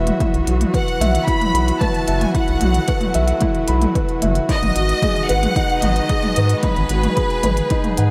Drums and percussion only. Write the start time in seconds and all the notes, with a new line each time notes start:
0.07 closed hi-hat, mid tom
0.20 kick, closed hi-hat, mid tom
0.34 closed hi-hat
0.47 closed hi-hat
0.61 closed hi-hat, mid tom
0.74 kick, closed hi-hat
0.88 closed hi-hat
1.01 closed hi-hat, mid tom
1.15 closed hi-hat
1.28 kick, closed hi-hat
1.41 closed hi-hat, mid tom
1.55 closed hi-hat
1.68 closed hi-hat
1.81 kick, closed hi-hat, mid tom
1.94 closed hi-hat
2.08 closed hi-hat
2.21 closed hi-hat, mid tom
2.35 kick, closed hi-hat
2.48 closed hi-hat
2.61 closed hi-hat, mid tom
2.74 closed hi-hat
2.88 kick, closed hi-hat
3.01 closed hi-hat, mid tom
3.14 closed hi-hat
3.28 closed hi-hat
3.41 kick, closed hi-hat, mid tom
3.55 closed hi-hat
3.68 closed hi-hat
3.82 closed hi-hat, mid tom
3.95 kick, closed hi-hat
4.09 closed hi-hat
4.22 closed hi-hat, mid tom
4.35 closed hi-hat
4.49 kick, closed hi-hat
4.63 closed hi-hat, mid tom
4.76 closed hi-hat
4.89 closed hi-hat
5.02 kick, closed hi-hat, mid tom
5.16 closed hi-hat
5.29 closed hi-hat
5.43 closed hi-hat, mid tom
5.56 kick, closed hi-hat
5.70 closed hi-hat
5.82 closed hi-hat, mid tom
5.96 closed hi-hat
6.09 kick, closed hi-hat
6.22 closed hi-hat, mid tom
6.36 closed hi-hat
6.49 closed hi-hat
6.63 kick, closed hi-hat, mid tom
6.76 closed hi-hat
6.89 closed hi-hat
7.03 closed hi-hat, mid tom
7.17 kick, closed hi-hat
7.30 closed hi-hat
7.43 closed hi-hat, mid tom
7.57 closed hi-hat
7.70 kick, closed hi-hat
7.84 closed hi-hat, mid tom
7.97 closed hi-hat